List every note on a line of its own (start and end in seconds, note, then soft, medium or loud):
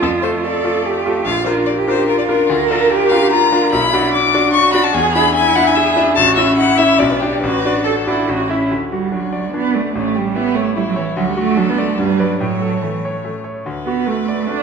0.00 0.23 F2 medium
0.00 0.46 F4 medium
0.00 0.11 A4 medium
0.22 0.60 A3 soft
0.22 0.61 F4 soft
0.22 0.61 A4 medium
0.22 0.30 C5 medium
0.44 0.87 A4 medium
0.44 1.04 D5 medium
0.64 1.02 A3 soft
0.64 1.02 F4 medium
0.64 1.02 A4 medium
0.85 1.28 G4 medium
1.06 1.24 A3 soft
1.06 1.25 F4 soft
1.06 1.25 A4 medium
1.25 1.46 A#1 medium
1.25 1.70 F4 medium
1.25 1.45 F5 medium
1.45 1.84 D4 medium
1.45 1.84 F4 medium
1.45 1.84 A#4 medium
1.45 1.53 C5 medium
1.66 2.11 G4 medium
1.66 1.74 D5 medium
1.87 2.25 D4 medium
1.87 2.25 F4 soft
1.87 2.26 A#4 medium
1.87 2.07 C5 loud
2.08 2.49 F4 medium
2.08 2.18 A#4 medium
2.18 2.23 D5 medium
2.27 2.47 D4 soft
2.27 2.48 F4 soft
2.27 2.49 A#4 medium
2.27 2.48 A#4 medium
2.47 2.70 D2 medium
2.47 2.67 F4 medium
2.47 2.93 A#4 medium
2.68 3.08 D4 medium
2.68 3.08 F4 medium
2.68 2.91 A4 medium
2.68 3.08 A#4 medium
2.89 3.34 G4 loud
2.89 3.11 A#4 medium
3.10 3.48 D4 medium
3.10 3.48 F4 medium
3.10 3.48 A#4 medium
3.10 3.30 F5 loud
3.31 3.72 F4 medium
3.31 3.71 A#5 loud
3.52 3.71 D4 medium
3.52 3.71 F4 medium
3.52 3.71 A#4 medium
3.71 3.93 B1 medium
3.71 4.17 E4 medium
3.71 4.12 B5 loud
3.93 4.30 D4 medium
3.93 4.30 F#4 medium
3.93 4.30 D5 medium
4.13 4.57 D4 medium
4.13 4.52 D6 loud
4.34 4.71 D4 medium
4.34 4.71 F#4 medium
4.34 4.71 D5 medium
4.53 4.95 F#4 medium
4.53 4.72 C#6 loud
4.73 4.93 D4 medium
4.73 4.93 F#4 medium
4.73 4.93 D5 medium
4.73 4.85 B5 loud
4.84 4.95 A5 loud
4.94 5.15 E2 medium
4.94 5.35 G#4 medium
4.94 5.14 G#5 loud
5.15 5.52 D4 medium
5.15 5.53 E4 medium
5.15 5.53 E5 medium
5.15 5.34 B5 loud
5.35 5.79 E4 medium
5.35 5.57 G#5 loud
5.55 5.93 D4 medium
5.55 5.93 E4 medium
5.55 5.94 E5 medium
5.55 5.68 F#5 loud
5.67 5.77 G#5 loud
5.75 6.18 G#4 medium
5.75 5.97 E5 loud
5.96 6.15 D4 medium
5.96 6.15 E4 medium
5.96 6.16 E5 medium
6.15 6.37 A1 medium
6.15 6.58 F#4 medium
6.15 6.35 A5 loud
6.36 6.75 C#4 medium
6.36 6.75 E4 medium
6.36 6.56 E5 medium
6.36 6.75 E5 medium
6.57 7.03 E4 medium
6.57 6.79 F#5 loud
6.77 6.97 C#4 medium
6.77 6.98 E4 medium
6.77 7.00 E5 loud
6.77 6.98 E5 medium
6.99 7.20 B1 medium
6.99 7.43 D4 medium
6.99 7.11 D5 loud
7.10 7.21 B4 medium
7.20 7.41 D4 medium
7.20 7.41 G4 medium
7.20 7.41 D5 medium
7.41 7.64 A1 medium
7.41 7.80 F#4 medium
7.41 7.85 B4 loud
7.65 8.03 D4 medium
7.65 8.03 F#4 medium
7.65 8.03 D5 medium
7.84 8.27 A4 medium
7.84 7.93 A4 medium
8.06 8.26 D4 soft
8.06 8.29 E4 medium
8.06 8.26 F#4 medium
8.06 8.26 D5 medium
8.28 8.49 A1 medium
8.28 8.51 F#4 medium
8.49 8.68 C#4 soft
8.49 8.70 E4 medium
8.49 8.68 E4 medium
8.49 8.68 E5 medium
8.71 9.91 D2 soft
8.91 9.13 G3 medium
8.91 9.25 F#4 soft
9.11 9.52 F#3 medium
9.11 9.45 D4 soft
9.11 9.52 F#4 soft
9.32 9.65 D5 soft
9.51 9.76 B3 medium
9.51 9.95 D4 soft
9.51 9.86 D4 soft
9.74 9.95 A3 medium
9.74 9.94 D5 soft
9.93 11.13 A1 medium
9.93 10.19 A3 medium
9.93 10.37 C#4 soft
10.16 10.37 G3 medium
10.16 10.48 G4 soft
10.35 10.57 B3 medium
10.35 10.75 E4 medium
10.35 10.68 E4 soft
10.55 10.76 A3 medium
10.55 10.88 C#5 soft
10.75 10.80 G3 medium
10.75 11.18 E4 medium
10.75 11.09 E4 soft
10.88 10.97 F#3 medium
10.96 11.06 E3 medium
10.96 11.16 C#5 medium
11.16 11.96 D2 medium
11.16 11.27 F#3 medium
11.16 11.58 F#4 medium
11.29 11.33 G3 medium
11.37 11.59 A3 medium
11.37 11.70 F#4 medium
11.57 11.71 F#3 medium
11.57 11.90 D4 soft
11.57 11.99 A4 medium
11.69 11.81 B3 medium
11.78 11.98 A3 medium
11.78 11.99 D5 medium
11.97 12.39 G2 medium
11.97 12.21 G3 medium
11.97 12.38 B4 medium
12.19 12.40 F#3 medium
12.19 12.38 B4 soft
12.19 12.38 D5 soft
12.39 13.62 A2 medium
12.39 12.82 F#3 medium
12.39 13.42 C#5 medium
12.62 12.95 A4 soft
12.81 13.23 E3 medium
12.81 13.16 A3 soft
13.05 13.37 C#5 soft
13.24 13.58 A3 soft
13.44 13.65 C#5 soft
13.65 14.63 D2 medium
13.65 14.63 B4 medium
13.85 14.09 B3 medium
13.85 14.20 F#4 soft
14.07 14.48 A3 medium
14.07 14.41 A3 soft
14.28 14.61 D5 medium
14.47 14.63 A3 soft
14.47 14.63 D4 medium